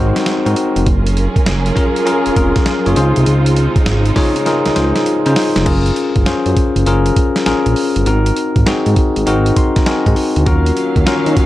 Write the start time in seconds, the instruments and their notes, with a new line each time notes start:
Already playing: analog synth bass G#1, string section F#3 G#3 C4, tine electric piano C4 D#4 F#4 A#4 C5
0.16 snare, closed hi-hat
0.26 snare, closed hi-hat
0.45 analog synth bass G#2, tine electric piano C4 D#4 F#4 A#4, closed hi-hat
0.56 closed hi-hat
0.76 analog synth bass F1, closed hi-hat
0.86 analog synth bass F#1, string section F#3 C#4 F4 G#4 A#4, kick, closed hi-hat
1.07 closed hi-hat
1.17 closed hi-hat
1.36 kick, closed hi-hat
1.46 analog synth bass F#1, snare, closed hi-hat
1.66 closed hi-hat
1.76 tine electric piano C#4 F4 G#4 A#4, kick, closed hi-hat
1.96 closed hi-hat
2.06 tine electric piano C#4 F4 G#4 A#4, closed hi-hat
2.26 analog synth bass F1, closed hi-hat
2.36 analog synth bass F1, tine electric piano C#4 F4 G#4 A#4, kick, closed hi-hat
2.56 kick, snare, closed hi-hat
2.66 snare, closed hi-hat
2.85 analog synth bass F#1, tine electric piano C#4 F4 G#4 C#5, closed hi-hat
2.96 analog synth bass C#2, string section C#3 G#3 C4 D#4, tine electric piano D#4 F4 G#4 C5, closed hi-hat
3.16 analog synth bass C2, closed hi-hat
3.26 analog synth bass C#2, closed hi-hat
3.46 closed hi-hat
3.56 closed hi-hat
3.76 kick, closed hi-hat
3.86 analog synth bass G#1, snare, closed hi-hat
4.05 closed hi-hat
4.16 tine electric piano D#4 F4 G#4 C#5, kick, snare, open hi-hat
4.36 closed hi-hat
4.46 tine electric piano D#4 F4 G#4 A#4, snare, closed hi-hat
4.66 analog synth bass C#2, snare, closed hi-hat
4.75 analog synth bass C#2, tine electric piano D#4 F4 G#4 C5, snare, closed hi-hat
4.96 snare, closed hi-hat
5.06 closed hi-hat
5.25 analog synth bass C#3, tine electric piano D#4 F4 G#4 C5, closed hi-hat
5.36 snare, open hi-hat
5.56 analog synth bass F1, snare, closed hi-hat
5.66 analog synth bass F#1, tine electric piano C#4 F4 G#4 A#4, kick, closed hi-hat, crash
5.86 closed hi-hat
5.96 closed hi-hat
6.16 analog synth bass F#1, kick, closed hi-hat
6.26 analog synth bass F#2, tine electric piano C#4 F4 G#4 C5, snare, closed hi-hat
6.46 analog synth bass F#2, closed hi-hat
6.57 kick, closed hi-hat
6.76 analog synth bass F#1, closed hi-hat
6.86 analog synth bass F#1, tine electric piano C#4 F4 G#4 A#4, closed hi-hat
7.06 closed hi-hat
7.16 kick, closed hi-hat
7.36 snare, closed hi-hat
7.46 analog synth bass A#1, tine electric piano C#4 F4 G#4 A#4, snare, closed hi-hat
7.66 analog synth bass A#1, closed hi-hat
7.76 open hi-hat
7.96 analog synth bass G1, closed hi-hat
8.06 analog synth bass G#1, tine electric piano C4 D#4 F#4 A#4, closed hi-hat
8.26 closed hi-hat
8.36 closed hi-hat
8.56 analog synth bass G#1, kick, closed hi-hat
8.66 analog synth bass G#2, tine electric piano C4 D#4 F#4 G#4, snare, closed hi-hat
8.86 analog synth bass G#2, closed hi-hat
8.96 kick, closed hi-hat
9.16 analog synth bass G#1, closed hi-hat
9.26 analog synth bass G#1, tine electric piano C4 D#4 F#4 A#4, closed hi-hat
9.46 closed hi-hat
9.56 tine electric piano C6, kick, closed hi-hat
9.76 tine electric piano A#5, kick, snare, closed hi-hat
9.86 tine electric piano C4 D#4 F#4 A#4 G#5, snare, closed hi-hat
10.06 analog synth bass G#2, tine electric piano F#5, kick, closed hi-hat
10.16 open hi-hat
10.36 analog synth bass D2, closed hi-hat
10.46 analog synth bass D#2, string section D#3 F#3 A#3 C#4 F5, tine electric piano C#4 F4 F#4 A#4, kick, closed hi-hat
10.66 closed hi-hat
10.77 closed hi-hat
10.96 analog synth bass D#2, kick, closed hi-hat
11.06 analog synth bass D#3, tine electric piano C#4 F4 F#4 A#4, snare, closed hi-hat
11.26 analog synth bass D#3, closed hi-hat
11.37 kick, closed hi-hat